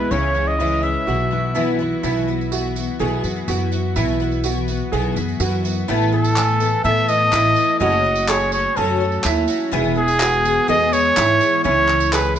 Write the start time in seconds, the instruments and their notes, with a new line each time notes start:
Already playing: steel-string acoustic guitar E2 E3 B3, twelve-string acoustic guitar E3 G#3 B3 E4, trumpet B4
0.11 upright bass C#2, twelve-string acoustic guitar C#3 E3 G#3 C#4 E4, upright piano C#4, trumpet C#5
0.34 twelve-string acoustic guitar G#3 C#4 E4
0.47 trumpet D#5
0.59 twelve-string acoustic guitar C#3 E3 G#3 C#4 E4, upright piano E4
0.83 twelve-string acoustic guitar G#3 C#4 E4, trumpet E5
1.07 upright bass B1, steel-string acoustic guitar B2, twelve-string acoustic guitar E3 B3 E4 F#4, upright piano F#4
1.31 twelve-string acoustic guitar B3 E4 F#4
1.55 twelve-string acoustic guitar B2 E3 B3 E4 F#4, upright piano E4
1.79 twelve-string acoustic guitar B3 E4 F#4
2.03 upright bass B1, twelve-string acoustic guitar B2 E3 B3 E4 F#4, upright piano E4, tambourine
2.17 tambourine
2.28 twelve-string acoustic guitar B3 E4 F#4
2.41 tambourine
2.52 twelve-string acoustic guitar E3 B3 E4 F#4, upright piano F#4, tambourine
2.76 twelve-string acoustic guitar B3 E4 F#4, tambourine
2.99 upright bass B1, twelve-string acoustic guitar B2 E3 B3 E4 F#4, upright piano G#4
3.23 upright bass F#2, twelve-string acoustic guitar B3 E4 F#4, tambourine
3.36 tambourine
3.48 upright bass F#2, twelve-string acoustic guitar E3 B3 E4 F#4, upright piano F#4, tambourine
3.60 tambourine
3.72 twelve-string acoustic guitar B3 E4 F#4, tambourine
3.96 upright bass B1, twelve-string acoustic guitar B2 E3 B3 E4 F#4, upright piano E4, tambourine
4.08 tambourine
4.20 twelve-string acoustic guitar B3 E4 F#4, tambourine
4.32 tambourine
4.44 twelve-string acoustic guitar E3 B3 E4 F#4, upright piano F#4, tambourine
4.68 twelve-string acoustic guitar B3 E4 F#4, tambourine
4.92 upright bass B1, twelve-string acoustic guitar B2 E3 B3 E4 F#4, upright piano G#4
5.16 upright bass F#2, twelve-string acoustic guitar B3 E4 F#4, tambourine
5.29 tambourine
5.40 upright bass F#2, twelve-string acoustic guitar E3 B3 E4 F#4, upright piano F#4, tambourine
5.53 tambourine
5.64 twelve-string acoustic guitar B3 E4 F#4, tambourine
5.88 upright bass A1, twelve-string acoustic guitar A2 E3 A3 B3 A4, upright piano E4
6.01 tambourine
6.12 twelve-string acoustic guitar A3 B3 A4, trumpet A4
6.24 tambourine
6.36 twelve-string acoustic guitar E3 A3 B3 A4, upright piano G#5, clap, tambourine
6.48 tambourine
6.60 twelve-string acoustic guitar A3 B3 A4, tambourine
6.84 twelve-string acoustic guitar A2 E3 A3 B3 A4, upright bass A2, upright piano A4, trumpet E5
7.08 twelve-string acoustic guitar A3 B3 A4, trumpet D#5, tambourine
7.32 upright bass A1, twelve-string acoustic guitar E3 A3 B3 A4, upright piano E4, clap, tambourine
7.55 twelve-string acoustic guitar A3 B3 A4, tambourine
7.69 tambourine
7.80 upright bass F#1, twelve-string acoustic guitar F#2 C#3 F#3 A3 C#4 F#4, upright piano F#4, trumpet D#5
7.92 tambourine
8.04 twelve-string acoustic guitar F#3 A3 C#4 F#4
8.15 tambourine
8.28 twelve-string acoustic guitar F#3 A3 C#4 F#4, upright piano G#4, trumpet C#5, clap, tambourine
8.40 tambourine
8.52 twelve-string acoustic guitar F#3 A3 C#4 F#4, trumpet C#5, tambourine
8.76 twelve-string acoustic guitar F#2 C#3 F#3 A3 C#4 F#4, upright bass F#2, trumpet A4, upright piano A4
9.00 twelve-string acoustic guitar F#3 A3 C#4 F#4
9.12 tambourine
9.23 upright bass D#2, twelve-string acoustic guitar F#3 A3 C#4 F#4, upright piano E4, clap, tambourine
9.36 tambourine
9.48 twelve-string acoustic guitar F#3 A3 C#4 F#4, tambourine
9.60 tambourine
9.71 upright bass E1, twelve-string acoustic guitar E2 B2 E3 G#3 B3 G#4, upright piano E4
9.84 tambourine
9.95 twelve-string acoustic guitar E3 G#3 B3 G#4, trumpet G#4
10.08 tambourine
10.20 twelve-string acoustic guitar E3 G#3 B3 G#4, upright piano F#4, clap, tambourine
10.33 tambourine
10.44 twelve-string acoustic guitar E3 G#3 B3 G#4, tambourine
10.68 twelve-string acoustic guitar E2 B2 E3 G#3 B3 G#4, upright bass E2, upright piano G#4, trumpet D#5
10.92 twelve-string acoustic guitar E3 G#3 B3 G#4, trumpet C#5, tambourine
11.05 tambourine
11.16 upright bass G#2, twelve-string acoustic guitar E3 G#3 B3 G#4, upright piano E4, clap, tambourine
11.28 tambourine
11.40 twelve-string acoustic guitar E3 G#3 B3 G#4, tambourine
11.52 tambourine
11.64 upright bass C#2, twelve-string acoustic guitar C#3 E3 G#3 C#4 E4, upright piano E4, trumpet C#5
11.88 twelve-string acoustic guitar G#3 C#4 E4, clap, tambourine
12.00 tambourine
12.12 twelve-string acoustic guitar E3 G#3 C#4 E4, upright piano G#4, trumpet B4, clap, tambourine
12.25 tambourine
12.35 twelve-string acoustic guitar E4